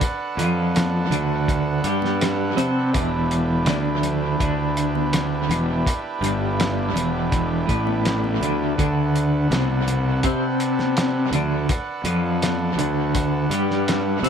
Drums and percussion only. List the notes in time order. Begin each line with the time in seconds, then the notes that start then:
0.01 kick, closed hi-hat
0.39 closed hi-hat
0.75 snare, closed hi-hat, high conga
1.11 closed hi-hat, low conga
1.48 kick, closed hi-hat
1.84 closed hi-hat
2.02 snare, high conga
2.21 snare, closed hi-hat
2.57 closed hi-hat, low conga
2.94 kick, closed hi-hat
3.31 closed hi-hat
3.66 snare, closed hi-hat, high conga
4.03 closed hi-hat, low conga
4.40 kick, closed hi-hat
4.77 closed hi-hat
4.95 high conga
5.13 snare, closed hi-hat
5.50 closed hi-hat, low conga
5.87 kick, closed hi-hat
6.23 closed hi-hat, low conga
6.60 snare, closed hi-hat, high conga
6.96 closed hi-hat, low conga
7.32 kick, closed hi-hat
7.69 kick, closed hi-hat
7.87 high conga
8.05 snare, closed hi-hat
8.24 high conga
8.41 closed hi-hat, low conga
8.79 kick, closed hi-hat
9.16 closed hi-hat
9.51 snare, closed hi-hat, high conga
9.87 closed hi-hat, low conga
10.23 kick, closed hi-hat
10.60 closed hi-hat
10.79 snare, high conga
10.97 snare, closed hi-hat
11.33 closed hi-hat, low conga
11.69 kick, closed hi-hat
12.05 closed hi-hat
12.42 snare, closed hi-hat, high conga
12.79 closed hi-hat, low conga
13.15 kick, closed hi-hat
13.51 closed hi-hat
13.71 snare
13.88 snare, closed hi-hat
14.24 closed hi-hat, low conga